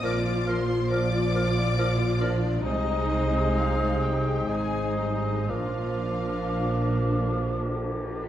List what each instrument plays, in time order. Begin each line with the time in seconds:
Already playing: french horn section F3
0.02 double bass section A#1, cello section A#2, bassoon F3, viola section F3 F4, french horn section F4, clarinet A#4, violin section D5 D6, flute F6
0.46 bassoon F3, clarinet A#4, violin section C5 C6, flute F6
0.90 viola section F3 F4, bassoon F3, clarinet A#4, violin section D5 D6, flute F6
1.34 bassoon F3, clarinet A#4, flute F6
1.78 bassoon F3, clarinet A#4, flute F6
2.20 bassoon F3, violin section D4 D5, clarinet A#4, flute F6
2.63 double bass section C2, cello section C3, french horn section G#3 D#4, viola section G#3 D#4, bassoon G#3, violin section D#4 D#5, clarinet C5, flute D#6
3.54 violin section F4 F5
4.01 violin section G4 G5
4.48 double bass section G#1, cello section G#2, viola section G#3 D#4, bassoon G#3, violin section G#4 G#5, clarinet C5, flute D#6
4.97 viola section G3, violin section D#4 D#5
5.48 double bass section A#1, cello section A#2, french horn section F3 D4, viola section F3 D4, bassoon F3, violin section F4 F5, clarinet A#4, flute D6